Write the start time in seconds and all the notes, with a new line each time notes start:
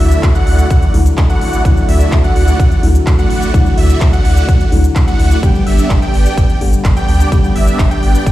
Already playing: D3 F#3 A3 E4
0.00 D2 A3 E4 F#4 D5 E5
0.12 closed hi-hat, shaker
0.23 D2, kick, clap, closed hi-hat, ride, shaker
0.35 A3 E4 F#4 D5 F#5, closed hi-hat, shaker
0.47 D2, open hi-hat
0.59 closed hi-hat, shaker
0.70 D2 A3 E4 F#4 D5 F#5, kick, closed hi-hat, ride, shaker
0.82 D2, closed hi-hat, shaker
0.93 D2 D3 F#3 A3 E4, open hi-hat
1.06 closed hi-hat, shaker
1.18 D2, kick, clap, closed hi-hat, ride, shaker
1.29 A3 E4 F#4 D5 F#5, closed hi-hat, shaker
1.41 A1, open hi-hat
1.53 closed hi-hat, shaker
1.64 D2 D3 F#3 A3 E4 F#4 D5 F#5, kick, closed hi-hat, ride, shaker
1.77 shaker
1.88 D2 A3 E4 F#4 D5 E5, open hi-hat
2.01 closed hi-hat, shaker
2.12 D2, kick, clap, closed hi-hat, ride, shaker
2.24 A3 E4 F#4 D5 F#5, closed hi-hat, shaker
2.36 D2, open hi-hat
2.48 closed hi-hat, shaker
2.59 D2 A3 E4 F#4 D5 F#5, kick, closed hi-hat, ride, shaker
2.71 D2, closed hi-hat, shaker
2.83 D2 D3 F#3 A3 E4, open hi-hat
2.95 closed hi-hat, shaker
3.07 D2, kick, clap, closed hi-hat, ride, shaker
3.18 A3 E4 F#4 D5 F#5, closed hi-hat, shaker
3.30 A1, open hi-hat
3.42 closed hi-hat, shaker
3.53 D2 D3 F#3 A3 E4 F#4 D5 F#5, kick, closed hi-hat, ride, shaker
3.66 shaker
3.78 D2 A3 E4 F#4 D5 E5, open hi-hat
3.90 closed hi-hat, shaker
4.01 D2, kick, clap, closed hi-hat, ride, shaker
4.13 A3 E4 F#4 D5 F#5, closed hi-hat, shaker
4.25 D2, open hi-hat
4.37 closed hi-hat, shaker
4.48 D2 A3 E4 F#4 D5 F#5, kick, closed hi-hat, ride, shaker
4.60 D2, closed hi-hat, shaker
4.72 D2 D3 F#3 A3 E4, open hi-hat
4.84 closed hi-hat, shaker
4.96 D2, kick, clap, closed hi-hat, ride, shaker
5.07 A3 E4 F#4 D5 F#5, closed hi-hat, shaker
5.19 D2, open hi-hat
5.31 closed hi-hat, shaker
5.42 G1 G2 D3 G3 B3 D4 G4 D5 G5, kick, closed hi-hat, ride, shaker
5.55 shaker
5.67 G1 B3 D4 G4 D5 E5, open hi-hat
5.78 closed hi-hat, shaker
5.90 G1, kick, clap, closed hi-hat, ride, shaker
6.02 B3 D4 G4 D5 G5, closed hi-hat, shaker
6.14 G1, open hi-hat
6.26 closed hi-hat, shaker
6.37 G1 B3 D4 G4 D5 G5, kick, closed hi-hat, ride, shaker
6.49 G1, closed hi-hat, shaker
6.61 G1 G2 D3 G3 B3 G4, open hi-hat
6.73 closed hi-hat, shaker
6.85 G1, kick, clap, closed hi-hat, ride, shaker
6.96 B3 D4 G4 D5 G5, closed hi-hat, shaker
7.08 D2, open hi-hat
7.20 closed hi-hat, shaker
7.31 G1 G2 D3 G3 B3 D4 G4 D5 G5, kick, closed hi-hat, ride, shaker
7.44 shaker
7.55 G1 B3 D4 G4 D5 E5, open hi-hat
7.67 closed hi-hat, shaker
7.79 G1, kick, clap, closed hi-hat, ride, shaker
7.91 B3 D4 G4 D5 G5, closed hi-hat, shaker
8.03 G1, open hi-hat
8.15 closed hi-hat, shaker
8.26 G1 B3 D4 G4 D5 G5, kick, closed hi-hat, ride, shaker